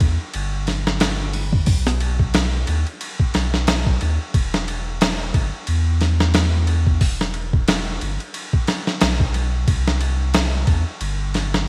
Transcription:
0.00 0.18 E2 medium
0.00 kick medium
0.00 ride medium
0.34 1.65 G1 medium
0.34 ride medium
0.67 snare soft
0.67 ride medium
0.87 snare medium
1.00 snare loud
1.00 ride medium
1.33 ride medium
1.53 kick medium
1.66 2.65 B1 loud
1.66 kick loud
1.66 open hi-hat medium
1.87 snare soft
2.00 ride medium
2.19 kick medium
2.34 snare loud
2.34 ride medium
2.67 2.85 D#2 medium
2.67 ride medium
2.87 ride soft
3.01 ride medium
3.20 kick medium
3.34 3.99 B1 medium
3.34 snare medium
3.34 ride medium
3.54 snare soft
3.67 snare loud
3.67 ride medium
3.86 kick loud
4.01 4.18 D#2 medium
4.01 ride medium
4.34 5.32 E1 loud
4.34 kick loud
4.34 ride medium
4.54 snare medium
4.68 ride medium
5.01 snare loud
5.01 ride medium
5.34 5.51 G1 medium
5.34 kick loud
5.34 ride medium
5.67 6.98 E2 medium
5.67 ride medium
6.01 snare soft
6.01 ride medium
6.20 snare medium
6.34 snare loud
6.34 ride medium
6.67 ride medium
6.87 kick medium
7.01 7.98 E1 loud
7.01 kick loud
7.01 open hi-hat medium
7.21 snare soft
7.34 ride medium
7.53 kick loud
7.68 snare loud
7.68 ride medium
8.01 8.18 G1 medium
8.01 ride medium
8.20 ride soft
8.34 ride medium
8.53 kick loud
8.67 snare medium
8.67 ride medium
8.87 snare soft
9.01 9.65 B1 loud
9.01 snare loud
9.01 ride medium
9.20 kick loud
9.34 ride medium
9.68 10.65 C2 medium
9.68 kick loud
9.68 ride medium
9.87 snare soft
10.01 ride medium
10.34 snare loud
10.34 ride medium
10.67 10.84 E2 medium
10.67 kick medium
10.67 ride medium
11.01 11.68 G1 loud
11.01 ride medium
11.34 snare soft
11.34 ride medium
11.54 snare medium

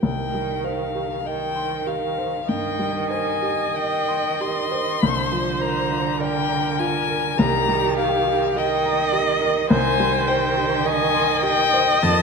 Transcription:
0.03 2.44 C2 medium
0.03 1.22 D#3 medium
0.03 0.66 G5 medium
0.34 0.83 G3 soft
0.64 1.14 C5 soft
0.64 1.28 F5 medium
0.95 1.44 G4 soft
1.25 2.46 D#3 medium
1.25 1.75 D#5 medium
1.25 1.88 G5 medium
1.56 2.05 C6 medium
1.87 2.36 G4 soft
1.87 2.50 F5 medium
2.18 2.67 C5 medium
2.48 2.98 G2 medium
2.48 3.73 D#3 medium
2.48 5.04 D#5 medium
2.48 3.10 G5 medium
2.79 3.29 G3 soft
3.10 3.62 C5 medium
3.10 3.78 G#5 medium
3.42 3.95 G4 medium
3.75 5.03 D#3 medium
3.75 4.28 D#5 medium
3.75 4.42 G5 medium
4.08 4.60 C6 medium
4.41 4.90 G4 medium
4.41 5.63 C6 loud
4.72 5.02 C5 medium
5.01 7.36 C2 medium
5.01 7.37 D3 medium
5.01 6.21 C5 medium
5.32 5.78 F3 medium
5.61 6.08 A#4 medium
5.61 6.22 A#5 medium
5.91 6.38 F4 medium
6.20 7.39 A#4 medium
6.20 6.68 D5 medium
6.20 6.80 G5 loud
6.49 6.97 A#5 medium
6.79 7.27 F4 medium
6.79 7.39 G#5 loud
7.09 7.39 A#4 medium
7.38 9.67 C2 medium
7.38 8.54 D#3 medium
7.38 8.58 G4 medium
7.38 7.97 A#5 loud
7.68 8.16 G3 medium
7.98 8.45 A#4 medium
7.98 8.59 F5 loud
8.28 8.74 G4 medium
8.56 9.69 D#3 medium
8.56 9.02 D#5 medium
8.56 9.69 D#5 loud
8.56 9.15 G5 medium
8.85 9.31 A#5 medium
9.13 9.59 G4 medium
9.13 9.70 D#5 medium
9.41 9.70 A#4 medium
9.70 11.98 C2 medium
9.70 11.99 D#3 medium
9.70 10.87 C5 loud
9.70 10.29 G#5 loud
10.00 10.46 G3 medium
10.28 10.74 C5 medium
10.28 10.88 G5 medium
10.57 11.03 G4 medium
10.85 12.22 D#5 loud
10.85 11.32 D#5 medium
10.85 11.45 G#5 loud
11.15 11.61 C6 medium
11.43 11.90 G4 medium
11.43 12.04 G5 loud
11.74 12.03 C5 medium
12.03 12.22 F2 medium
12.03 12.22 D#3 medium
12.03 12.22 A5 loud

